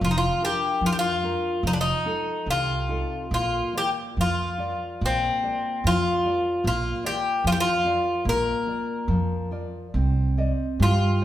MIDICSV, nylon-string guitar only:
0, 0, Header, 1, 2, 480
1, 0, Start_track
1, 0, Key_signature, -2, "major"
1, 0, Tempo, 809717
1, 11, Time_signature, 2, 2, 24, 8
1, 971, Tempo, 841515
1, 3371, Tempo, 804290
1, 4811, Tempo, 846262
1, 6505, End_track
2, 0, Start_track
2, 0, Title_t, "Nylon-string guitar"
2, 0, Program_c, 0, 24
2, 10, Note_on_c, 0, 53, 57
2, 243, Note_on_c, 0, 62, 42
2, 246, Note_on_c, 0, 65, 39
2, 250, Note_on_c, 0, 70, 43
2, 469, Note_off_c, 0, 53, 0
2, 482, Note_on_c, 0, 53, 55
2, 630, Note_off_c, 0, 62, 0
2, 632, Note_off_c, 0, 65, 0
2, 633, Note_off_c, 0, 70, 0
2, 729, Note_on_c, 0, 62, 40
2, 732, Note_on_c, 0, 65, 39
2, 736, Note_on_c, 0, 70, 45
2, 924, Note_off_c, 0, 62, 0
2, 925, Note_off_c, 0, 65, 0
2, 927, Note_off_c, 0, 70, 0
2, 955, Note_off_c, 0, 53, 0
2, 976, Note_on_c, 0, 53, 54
2, 1209, Note_on_c, 0, 63, 39
2, 1211, Note_on_c, 0, 65, 38
2, 1211, Note_on_c, 0, 69, 41
2, 1435, Note_off_c, 0, 53, 0
2, 1444, Note_on_c, 0, 48, 54
2, 1592, Note_off_c, 0, 63, 0
2, 1593, Note_off_c, 0, 65, 0
2, 1593, Note_off_c, 0, 69, 0
2, 1684, Note_on_c, 0, 63, 39
2, 1686, Note_on_c, 0, 65, 32
2, 1689, Note_on_c, 0, 69, 41
2, 1880, Note_off_c, 0, 63, 0
2, 1880, Note_off_c, 0, 65, 0
2, 1883, Note_off_c, 0, 69, 0
2, 1914, Note_off_c, 0, 48, 0
2, 1931, Note_on_c, 0, 58, 52
2, 2165, Note_on_c, 0, 65, 40
2, 2168, Note_on_c, 0, 70, 37
2, 2171, Note_on_c, 0, 74, 44
2, 2404, Note_off_c, 0, 58, 0
2, 2412, Note_on_c, 0, 53, 50
2, 2559, Note_off_c, 0, 65, 0
2, 2559, Note_off_c, 0, 70, 0
2, 2562, Note_off_c, 0, 74, 0
2, 2651, Note_on_c, 0, 65, 42
2, 2654, Note_on_c, 0, 70, 36
2, 2655, Note_on_c, 0, 74, 46
2, 2883, Note_off_c, 0, 53, 0
2, 2894, Note_on_c, 0, 58, 52
2, 3037, Note_off_c, 0, 65, 0
2, 3038, Note_off_c, 0, 70, 0
2, 3039, Note_off_c, 0, 74, 0
2, 3132, Note_on_c, 0, 65, 40
2, 3135, Note_on_c, 0, 70, 38
2, 3137, Note_on_c, 0, 74, 40
2, 3355, Note_off_c, 0, 58, 0
2, 3373, Note_on_c, 0, 53, 62
2, 3513, Note_off_c, 0, 65, 0
2, 3514, Note_off_c, 0, 70, 0
2, 3516, Note_off_c, 0, 74, 0
2, 3611, Note_on_c, 0, 65, 41
2, 3614, Note_on_c, 0, 70, 37
2, 3617, Note_on_c, 0, 74, 46
2, 3837, Note_off_c, 0, 53, 0
2, 3843, Note_on_c, 0, 58, 57
2, 3992, Note_off_c, 0, 65, 0
2, 3993, Note_off_c, 0, 70, 0
2, 3994, Note_off_c, 0, 74, 0
2, 4079, Note_on_c, 0, 65, 39
2, 4080, Note_on_c, 0, 70, 38
2, 4085, Note_on_c, 0, 74, 45
2, 4310, Note_off_c, 0, 58, 0
2, 4324, Note_on_c, 0, 53, 60
2, 4469, Note_off_c, 0, 65, 0
2, 4470, Note_off_c, 0, 70, 0
2, 4471, Note_off_c, 0, 74, 0
2, 4566, Note_on_c, 0, 65, 46
2, 4571, Note_on_c, 0, 70, 38
2, 4573, Note_on_c, 0, 74, 46
2, 4796, Note_off_c, 0, 53, 0
2, 4807, Note_on_c, 0, 58, 52
2, 4950, Note_off_c, 0, 65, 0
2, 4953, Note_off_c, 0, 70, 0
2, 4954, Note_off_c, 0, 74, 0
2, 5042, Note_on_c, 0, 65, 39
2, 5046, Note_on_c, 0, 70, 39
2, 5049, Note_on_c, 0, 74, 47
2, 5267, Note_off_c, 0, 58, 0
2, 5279, Note_on_c, 0, 53, 56
2, 5429, Note_off_c, 0, 65, 0
2, 5432, Note_off_c, 0, 70, 0
2, 5432, Note_off_c, 0, 74, 0
2, 5522, Note_on_c, 0, 65, 35
2, 5525, Note_on_c, 0, 70, 32
2, 5526, Note_on_c, 0, 74, 43
2, 5720, Note_off_c, 0, 65, 0
2, 5721, Note_off_c, 0, 70, 0
2, 5722, Note_off_c, 0, 74, 0
2, 5755, Note_off_c, 0, 53, 0
2, 5772, Note_on_c, 0, 60, 52
2, 6011, Note_on_c, 0, 72, 38
2, 6013, Note_on_c, 0, 74, 39
2, 6016, Note_on_c, 0, 75, 46
2, 6240, Note_off_c, 0, 60, 0
2, 6250, Note_on_c, 0, 55, 61
2, 6395, Note_off_c, 0, 72, 0
2, 6397, Note_off_c, 0, 74, 0
2, 6398, Note_off_c, 0, 75, 0
2, 6505, Note_off_c, 0, 55, 0
2, 6505, End_track
0, 0, End_of_file